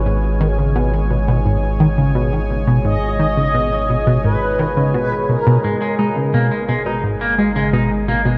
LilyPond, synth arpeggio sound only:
\new Staff \with { instrumentName = "Synth arpeggio sound" } { \clef bass \time 4/4 \key gis \dorian \tempo 4 = 86 gis,16 r16 dis16 cis16 b,16 r16 b,16 b,16 gis,16 r16 dis16 cis16 b,16 r16 b,16 b,16 | gis,16 r16 dis16 cis16 b,16 r16 b,16 b,16 gis,16 r16 dis16 cis16 b,16 r16 b,16 b,16 | gis,16 r16 gis16 cis16 b,16 r16 b,16 b,16 gis,16 r16 gis16 cis16 b,16 r16 b,16 b,16 | }